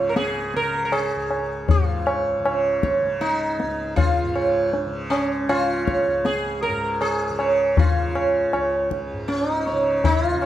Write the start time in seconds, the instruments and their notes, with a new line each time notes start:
Already playing: tanpura C#2 G#2 C#3, sitar F4
0.09 sitar A#4
0.16 sitar G#4, tabla te
0.54 tanpura C#3, sitar A#4, tabla te
0.85 sitar A#4
0.92 sitar G#4, tabla na
1.16 tanpura C#2
1.31 tabla na
1.69 sitar F4, tabla tin, tabla ge
1.79 tanpura G#2
2.07 sitar C#5, tabla na
2.39 tanpura C#3
2.45 sitar C#5, tabla na
2.83 sitar C#5, tabla ke
3.01 tanpura C#3
3.21 sitar D#4, tabla te
3.60 tanpura C#2, tabla te
3.96 sitar F4, tabla tin, tabla ge
4.25 tanpura G#2
4.35 sitar C#5, tabla na
4.73 tabla tin
4.86 tanpura C#3
5.10 sitar C#4, tabla na
5.48 tanpura C#3, sitar F4, tabla na
5.87 sitar C#5, tabla ke
6.07 tanpura C#2
6.25 sitar G#4, tabla te
6.63 sitar A#4, tabla te
6.69 tanpura G#2
7.01 sitar G#4, tabla na
7.30 tanpura C#3
7.39 sitar C#5, tabla na
7.77 sitar F4, tabla tin, tabla ge
7.90 tanpura C#3
8.15 sitar C#5, tabla na
8.53 tanpura C#2, sitar C#5, tabla na
8.91 tabla ke
9.13 tanpura G#2
9.28 sitar C#4, tabla te
9.51 sitar D#4
9.67 sitar C#5, tabla te
9.73 tanpura C#3
10.04 sitar D#4, tabla tin, tabla ge
10.26 sitar F4
10.34 tanpura C#3
10.42 tabla na